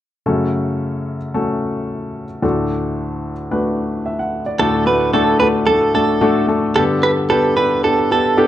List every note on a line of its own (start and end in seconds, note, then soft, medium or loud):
0.26 2.39 F#2 medium
0.26 2.39 C#3 soft
0.26 1.16 A3 medium
0.26 1.16 C#4 medium
0.26 1.16 F#4 medium
0.26 1.16 A4 medium
1.34 2.24 A3 medium
1.34 2.24 C#4 medium
1.34 2.24 F#4 medium
1.34 2.24 A4 medium
2.42 4.56 D2 medium
2.42 4.56 A2 medium
2.42 3.32 A3 medium
2.42 3.32 D4 medium
2.42 3.33 F#4 medium
2.42 3.33 A4 medium
3.51 4.41 A3 medium
3.51 4.41 D4 medium
3.51 4.41 F#4 medium
3.51 4.41 B4 medium
4.06 4.19 E5 soft
4.19 4.45 F#5 medium
4.46 4.72 D5 medium
4.59 6.72 D2 medium
4.59 6.72 A2 medium
4.59 4.82 A3 medium
4.59 4.82 D4 medium
4.59 4.82 F#4 medium
4.59 4.86 A4 medium
4.59 4.82 A4 medium
4.86 5.09 A3 medium
4.86 5.09 D4 medium
4.86 5.09 F#4 medium
4.86 5.09 B4 medium
4.86 5.13 B4 medium
5.13 5.36 A3 medium
5.13 5.36 D4 medium
5.13 5.36 F#4 medium
5.13 5.39 A4 medium
5.13 5.36 A4 medium
5.40 5.63 A3 medium
5.40 5.63 D4 medium
5.40 5.64 F#4 medium
5.40 5.64 A4 medium
5.40 5.47 B4 medium
5.67 5.91 A3 medium
5.67 5.90 D4 medium
5.67 5.91 F#4 medium
5.67 5.94 A4 medium
5.67 5.91 A4 medium
5.95 6.17 A3 medium
5.95 6.17 D4 medium
5.95 6.17 F#4 medium
5.95 6.45 A4 medium
5.95 6.17 A4 medium
6.21 6.44 A3 medium
6.21 6.44 D4 medium
6.21 6.44 F#4 medium
6.21 6.44 A4 medium
6.48 6.71 A3 medium
6.48 6.71 D4 medium
6.48 6.71 F#4 medium
6.48 6.71 A4 medium
6.76 8.47 G2 medium
6.76 8.47 D3 medium
6.76 6.98 B3 medium
6.76 6.98 D4 medium
6.76 6.99 G4 medium
6.76 6.83 A4 medium
6.76 6.99 A4 loud
7.03 7.25 B3 medium
7.03 7.25 D4 medium
7.03 7.26 G4 medium
7.03 7.25 A4 medium
7.03 7.10 B4 medium
7.30 7.52 B3 medium
7.30 7.52 D4 medium
7.30 7.52 G4 medium
7.30 7.55 A4 medium
7.30 7.52 B4 medium
7.57 7.79 B3 medium
7.57 7.79 D4 medium
7.57 7.79 G4 medium
7.57 7.79 A4 medium
7.57 7.84 B4 medium
7.84 8.06 B3 medium
7.84 8.06 D4 medium
7.84 8.07 G4 medium
7.84 8.11 A4 medium
7.84 8.07 A4 medium
8.11 8.33 B3 medium
8.11 8.33 D4 medium
8.11 8.33 G4 medium
8.11 8.33 A4 medium
8.11 8.47 A4 medium
8.37 8.47 B3 medium
8.37 8.47 D4 medium
8.37 8.47 G4 medium
8.37 8.47 A4 medium